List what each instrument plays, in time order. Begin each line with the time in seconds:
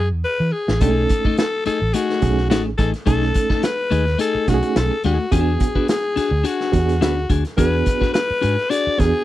Already playing: fingered electric bass F#2
0.12 fingered electric bass E2
0.24 alto saxophone B4
0.40 fingered electric bass E3
0.52 alto saxophone G#4
0.68 fingered electric bass A1, snare
0.81 fingered electric bass B1, reed electric piano A3 C#4 D#4 A4, clean electric guitar A3 D#4 G#4, alto saxophone A4, kick, closed hi-hat
1.09 muted clean electric guitar stroke, kick, closed hi-hat
1.25 clean electric guitar A3 D#4 A4, muted fingered electric bass stroke, kick
1.38 alto saxophone A4, muted clean electric guitar stroke, snare, closed hi-hat
1.66 clean electric guitar A3 D#4 G#4, alto saxophone A4, muted fingered electric bass stroke, snare, closed hi-hat
1.81 fingered electric bass A1, muted clean electric guitar stroke
1.94 clean electric guitar A3 D#4 G#4, alto saxophone F#4, closed hi-hat
2.10 snare
2.22 fingered electric bass B1, reed electric piano A3 C#4 D#4 G#4, kick, closed hi-hat
2.38 muted clean electric guitar stroke, snare
2.50 fingered electric bass A1, clean electric guitar A3 D#4 A4, alto saxophone F#4, snare, closed hi-hat
2.66 muted clean electric guitar stroke
2.78 fingered electric bass A1, clean electric guitar A3 D#4 G#4, alto saxophone A4, kick, closed hi-hat
2.93 muted clean electric guitar stroke, snare, closed hi-hat
3.06 fingered electric bass B1, clean electric guitar A3 D#4 G#4, reed electric piano A3 C#4 D#4 A4, alto saxophone A4, kick, closed hi-hat
3.22 snare
3.34 muted clean electric guitar stroke, kick, closed hi-hat
3.50 clean electric guitar A3 D#4 A4, muted fingered electric bass stroke, kick, snare
3.63 alto saxophone B4, muted clean electric guitar stroke, snare, closed hi-hat
3.91 fingered electric bass D#2, clean electric guitar A3 D#4 G#4, closed hi-hat
4.06 muted clean electric guitar stroke, snare
4.18 clean electric guitar A3 D#4 G#4, alto saxophone A4, closed hi-hat
4.35 muted fingered electric bass stroke
4.47 fingered electric bass B1, reed electric piano A3 C#4 D#4 G4, alto saxophone F#4, muted clean electric guitar stroke, kick, snare, closed hi-hat
4.54 reed electric piano G#4
4.63 muted clean electric guitar stroke, closed hi-hat
4.76 fingered electric bass B1, alto saxophone A4, muted clean electric guitar stroke, snare, closed hi-hat
4.91 muted clean electric guitar stroke
5.04 fingered electric bass D#2, clean electric guitar A3 D#4 G#4, alto saxophone F#4, snare, closed hi-hat
5.19 muted clean electric guitar stroke
5.31 fingered electric bass E2, reed electric piano B3 D4 F#4 G#4, clean electric guitar D4 F#4 G#4, alto saxophone G#4, kick, closed hi-hat
5.60 muted clean electric guitar stroke, kick, closed hi-hat
5.75 clean electric guitar D4 F#4 B4, muted fingered electric bass stroke, kick
5.88 alto saxophone G#4, muted clean electric guitar stroke, snare, closed hi-hat
6.16 clean electric guitar D4 F#4 G#4, muted fingered electric bass stroke, snare, closed hi-hat
6.31 fingered electric bass D2, muted clean electric guitar stroke
6.44 clean electric guitar D4 F#4 G#4, alto saxophone F#4, closed hi-hat
6.60 snare
6.72 fingered electric bass E2, reed electric piano B3 D4 F#4 G4, muted clean electric guitar stroke, kick, closed hi-hat
6.79 reed electric piano G#4
6.88 muted clean electric guitar stroke, snare, closed hi-hat
7.01 fingered electric bass D2, clean electric guitar D4 F#4 B4, alto saxophone F#4, snare, closed hi-hat
7.16 muted clean electric guitar stroke
7.30 fingered electric bass D2, clean electric guitar D4 F#4 G#4, kick, closed hi-hat
7.45 muted clean electric guitar stroke, snare, closed hi-hat
7.57 fingered electric bass E2, reed electric piano B3 D4 F#4 G#4, clean electric guitar D4 F#4 G#4, alto saxophone B4, kick, closed hi-hat
7.86 muted clean electric guitar stroke, kick, closed hi-hat
8.01 clean electric guitar D4 F#4 B4, muted fingered electric bass stroke, kick, snare
8.14 alto saxophone B4, muted clean electric guitar stroke, snare, closed hi-hat
8.30 muted fingered electric bass stroke
8.41 fingered electric bass G#2, clean electric guitar D4 F#4 G#4, closed hi-hat
8.58 snare
8.70 clean electric guitar D4 F#4 G#4, alto saxophone D5, closed hi-hat
8.87 muted fingered electric bass stroke
8.98 fingered electric bass E2, reed electric piano B3 D4 F#4 G4, alto saxophone G#4, muted clean electric guitar stroke, kick, snare, closed hi-hat
9.05 reed electric piano G#4
9.14 muted clean electric guitar stroke